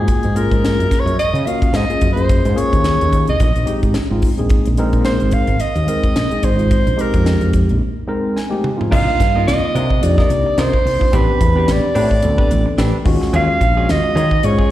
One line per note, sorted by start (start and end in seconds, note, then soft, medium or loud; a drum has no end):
0.00 0.24 A#3 medium
0.00 0.25 C#4 soft
0.00 0.25 F4 medium
0.00 0.25 F#4 medium
0.00 0.38 G#4 medium
0.08 kick medium
0.08 closed hi-hat medium
0.23 0.49 G#2 medium
0.23 closed hi-hat soft
0.35 1.12 A#3 medium
0.35 1.12 C#4 medium
0.35 1.12 F4 medium
0.35 1.12 G#4 loud
0.35 1.01 A#4 medium
0.35 closed hi-hat medium
0.51 0.76 G#2 medium
0.51 kick medium
0.51 closed hi-hat soft
0.65 snare loud
0.65 closed hi-hat medium
0.79 0.91 F#2 medium
0.79 closed hi-hat soft
0.91 muted fretless electric bass stroke soft
0.91 kick medium
0.91 snare soft
0.91 closed hi-hat medium
1.00 1.19 C#5 medium
1.06 1.17 F#2 medium
1.06 closed hi-hat soft
1.19 1.47 D#5 medium
1.19 closed hi-hat medium
1.33 1.45 C#3 medium
1.33 closed hi-hat soft
1.46 1.75 A#3 medium
1.46 1.75 C#4 medium
1.46 1.75 F4 medium
1.46 1.76 F#4 medium
1.46 1.77 F5 medium
1.46 closed hi-hat medium
1.62 muted fretless electric bass stroke soft
1.62 kick medium
1.62 closed hi-hat soft
1.73 1.88 G#2 medium
1.73 2.12 D#5 medium
1.73 snare loud
1.73 closed hi-hat medium
1.89 2.07 A#3 medium
1.89 2.07 C#4 medium
1.89 2.07 F4 medium
1.89 2.08 G#4 medium
1.89 muted fretless electric bass stroke soft
1.89 closed hi-hat soft
2.01 2.41 F#2 medium
2.01 kick medium
2.01 closed hi-hat medium
2.12 2.44 A#3 medium
2.12 2.45 C#4 medium
2.12 2.45 F4 medium
2.12 2.45 G#4 medium
2.12 2.59 C5 medium
2.17 closed hi-hat soft
2.29 kick loud
2.29 closed hi-hat medium
2.45 2.56 G#2 medium
2.45 closed hi-hat soft
2.55 3.32 A#3 medium
2.55 3.32 C#4 medium
2.55 3.32 F4 medium
2.55 3.32 G#4 medium
2.55 3.22 C#5 medium
2.55 closed hi-hat medium
2.59 muted fretless electric bass stroke soft
2.73 2.98 D#2 medium
2.73 kick medium
2.73 closed hi-hat soft
2.84 snare medium
2.84 closed hi-hat medium
3.01 3.26 D#2 medium
3.01 closed hi-hat soft
3.13 kick medium
3.13 closed hi-hat medium
3.27 3.39 C2 medium
3.27 3.80 D#5 medium
3.27 closed hi-hat soft
3.40 3.54 A#1 medium
3.40 kick medium
3.40 closed hi-hat medium
3.56 3.67 A#1 medium
3.56 closed hi-hat soft
3.65 3.95 G#3 medium
3.65 3.95 C4 medium
3.65 3.95 D#4 medium
3.65 3.95 G4 medium
3.65 closed hi-hat medium
3.83 3.94 G#1 medium
3.83 kick medium
3.83 closed hi-hat soft
3.94 snare loud
3.94 closed hi-hat medium
4.10 4.22 G#1 medium
4.10 4.28 G#3 medium
4.10 4.28 C4 medium
4.10 4.29 D#4 medium
4.10 4.29 F4 medium
4.22 kick medium
4.22 open hi-hat medium
4.37 4.50 A#1 medium
4.37 4.66 G#3 medium
4.37 4.66 C4 medium
4.37 4.66 D#4 medium
4.37 4.67 G#4 medium
4.37 closed hi-hat soft
4.49 kick loud
4.49 closed hi-hat medium
4.65 4.91 A#1 medium
4.65 closed hi-hat soft
4.77 5.54 G#3 loud
4.77 5.54 C4 loud
4.77 5.54 D#4 loud
4.77 5.54 A#4 loud
4.77 closed hi-hat medium
4.93 5.19 A#2 medium
4.93 kick medium
4.93 closed hi-hat soft
5.05 5.35 C5 medium
5.05 snare medium
5.05 closed hi-hat medium
5.20 5.32 G#1 medium
5.20 closed hi-hat soft
5.31 5.62 F5 medium
5.31 muted fretless electric bass stroke soft
5.31 kick medium
5.31 closed hi-hat medium
5.47 5.59 G#1 medium
5.47 closed hi-hat soft
5.60 6.46 D#5 medium
5.60 closed hi-hat medium
5.75 5.87 D#2 medium
5.75 closed hi-hat soft
5.87 6.16 G#3 medium
5.87 6.16 C4 medium
5.87 6.16 D#4 medium
5.87 6.16 A#4 loud
5.87 closed hi-hat medium
6.03 muted fretless electric bass stroke soft
6.03 kick medium
6.03 closed hi-hat soft
6.16 6.30 A#1 medium
6.16 snare loud
6.16 closed hi-hat medium
6.30 6.48 G#3 medium
6.30 6.48 C4 medium
6.30 6.49 D#4 medium
6.30 6.49 G#4 medium
6.30 muted fretless electric bass stroke soft
6.30 closed hi-hat soft
6.43 6.83 G#1 medium
6.43 7.02 C5 medium
6.43 kick medium
6.43 closed hi-hat medium
6.56 6.86 G#3 medium
6.56 6.86 C4 medium
6.56 6.86 D#4 medium
6.56 6.87 F4 medium
6.56 closed hi-hat soft
6.71 kick medium
6.71 closed hi-hat medium
6.87 6.98 A#1 medium
6.87 closed hi-hat soft
6.96 7.73 G#3 medium
6.96 7.74 C4 medium
6.96 7.74 D#4 medium
6.96 7.74 G4 medium
6.96 closed hi-hat medium
7.01 7.55 A#4 medium
7.14 7.39 F2 medium
7.14 kick medium
7.14 closed hi-hat soft
7.26 snare medium
7.26 closed hi-hat medium
7.41 7.66 F2 medium
7.41 closed hi-hat soft
7.53 kick medium
7.53 closed hi-hat medium
7.69 7.81 A#1 medium
7.69 closed hi-hat soft
8.07 8.36 G#3 loud
8.07 8.36 C4 medium
8.07 8.37 D#4 loud
8.07 8.37 A#4 loud
8.36 8.88 G#5 medium
8.36 snare soft
8.49 8.68 G#3 medium
8.49 8.69 C4 medium
8.49 8.69 D#4 medium
8.49 8.69 G4 medium
8.49 high tom medium
8.64 mid tom medium
8.76 8.90 G#3 medium
8.76 8.90 C4 medium
8.76 8.90 D#4 medium
8.76 8.91 F4 medium
8.81 floor tom medium
8.90 9.06 C2 medium
8.90 9.19 A#3 medium
8.90 9.20 D4 medium
8.90 9.10 D4 medium
8.90 9.19 D#4 medium
8.90 9.10 F4 medium
8.90 9.20 F4 loud
8.90 9.10 A#4 medium
8.90 9.10 D#5 medium
8.90 9.44 F5 loud
8.90 kick medium
8.90 crash medium
9.19 9.45 G2 medium
9.19 muted clean electric guitar stroke soft
9.19 kick medium
9.19 snare soft
9.19 closed hi-hat medium
9.35 9.80 A#3 medium
9.35 9.81 C4 medium
9.35 9.81 D#4 medium
9.35 9.82 F4 medium
9.35 9.47 F4 soft
9.35 9.47 A#4 medium
9.35 9.47 D#5 soft
9.47 9.61 C2 medium
9.47 10.05 D#5 medium
9.47 snare medium
9.47 closed hi-hat medium
9.63 muted fretless electric bass stroke soft
9.63 muted clean electric guitar stroke soft
9.75 10.00 C3 medium
9.75 9.90 D4 medium
9.75 9.90 F4 medium
9.75 9.90 A#4 medium
9.75 9.90 D#5 medium
9.75 closed hi-hat medium
9.90 muted clean electric guitar stroke soft
9.90 kick medium
10.01 10.16 F2 medium
10.01 10.58 A#3 medium
10.01 10.58 D4 medium
10.01 10.58 D#4 medium
10.01 10.58 G4 medium
10.01 10.61 D5 medium
10.01 closed hi-hat medium
10.18 10.30 F4 soft
10.18 10.30 A#4 soft
10.18 10.30 D#5 soft
10.18 kick medium
10.18 snare soft
10.30 10.44 C2 medium
10.30 muted clean electric guitar stroke soft
10.30 closed hi-hat medium
10.46 muted clean electric guitar stroke soft
10.58 10.71 C2 medium
10.58 10.76 D4 medium
10.58 10.76 F4 medium
10.58 10.76 A#4 medium
10.58 11.17 C5 medium
10.58 10.76 D#5 medium
10.58 snare loud
10.58 closed hi-hat medium
10.73 kick medium
10.83 10.99 C2 medium
10.83 10.92 D#4 soft
10.83 10.92 F4 soft
10.83 muted clean electric guitar stroke soft
10.83 open hi-hat medium
10.98 11.08 A#3 medium
10.98 11.08 D4 medium
10.98 11.08 D#4 medium
10.98 11.09 F4 medium
10.98 muted fretless electric bass stroke soft
10.98 muted clean electric guitar stroke soft
10.98 kick medium
11.12 11.27 A1 loud
11.12 11.40 B3 medium
11.12 11.40 C4 medium
11.12 11.31 C4 medium
11.12 11.40 D4 medium
11.12 11.31 D4 medium
11.12 11.41 G4 loud
11.12 11.31 G4 medium
11.12 11.31 B4 medium
11.12 kick medium
11.12 closed hi-hat medium
11.16 11.74 B4 medium
11.41 11.65 E2 medium
11.41 muted clean electric guitar stroke soft
11.41 kick medium
11.41 closed hi-hat medium
11.55 12.01 B3 medium
11.55 12.01 C4 medium
11.55 12.01 D4 medium
11.55 11.68 D4 soft
11.55 12.02 G4 medium
11.55 11.68 G4 soft
11.55 11.68 B4 soft
11.68 11.82 A1 medium
11.68 muted clean electric guitar stroke soft
11.68 snare medium
11.68 closed hi-hat medium
11.72 12.80 D5 medium
11.84 muted clean electric guitar stroke soft
11.84 muted fretless electric bass stroke soft
11.95 12.20 A2 medium
11.95 12.11 C4 medium
11.95 12.10 D4 medium
11.95 12.10 G4 medium
11.95 12.10 B4 medium
11.95 open hi-hat medium
12.11 muted clean electric guitar stroke soft
12.11 kick medium
12.21 12.38 D2 medium
12.21 12.78 B3 medium
12.21 12.79 C4 medium
12.21 12.79 D4 medium
12.21 12.79 A4 medium
12.21 closed hi-hat medium
12.38 12.50 D4 medium
12.38 12.50 G4 medium
12.38 12.50 B4 medium
12.38 kick medium
12.51 12.65 A1 medium
12.51 muted clean electric guitar stroke soft
12.51 closed hi-hat medium
12.66 muted clean electric guitar stroke soft
12.78 12.92 A1 medium
12.78 12.96 C4 medium
12.78 12.96 D4 medium
12.78 12.96 G4 medium
12.78 12.96 B4 medium
12.78 snare loud
12.78 closed hi-hat medium
13.04 13.19 D#2 medium
13.04 13.60 G#3 medium
13.04 13.60 C#4 medium
13.04 13.61 F4 medium
13.04 13.61 F#4 loud
13.04 muted clean electric guitar stroke soft
13.04 kick medium
13.04 open hi-hat medium
13.21 muted clean electric guitar stroke soft
13.21 muted fretless electric bass stroke soft
13.21 snare soft
13.33 13.47 D#2 loud
13.33 13.51 F#3 medium
13.33 13.51 C#4 medium
13.33 13.51 F4 medium
13.33 13.52 G#4 medium
13.33 13.92 F5 loud
13.33 closed hi-hat medium
13.61 13.86 A#1 medium
13.61 muted clean electric guitar stroke soft
13.61 kick medium
13.61 closed hi-hat medium
13.76 14.22 G#3 medium
13.76 14.22 C#4 medium
13.76 13.87 C#4 soft
13.76 14.22 F4 medium
13.76 13.88 F4 soft
13.76 14.22 F#4 medium
13.76 13.87 G#4 soft
13.88 14.03 D#2 medium
13.88 14.46 D#5 loud
13.88 muted clean electric guitar stroke soft
13.88 snare loud
13.88 closed hi-hat medium
14.04 muted clean electric guitar stroke soft
14.04 muted fretless electric bass stroke soft
14.15 14.41 D#3 loud
14.15 14.31 F#3 medium
14.15 14.30 C#4 medium
14.15 14.30 F4 medium
14.15 14.29 G#4 medium
14.15 closed hi-hat medium
14.31 muted clean electric guitar stroke soft
14.31 kick medium
14.43 14.57 G#2 medium
14.43 14.71 G#3 medium
14.43 14.71 C#4 medium
14.43 14.71 F4 medium
14.43 14.71 G#4 medium
14.43 14.71 C#5 medium
14.43 closed hi-hat medium
14.58 14.70 C#4 soft
14.58 14.70 F4 soft
14.58 14.70 G#4 soft
14.58 kick medium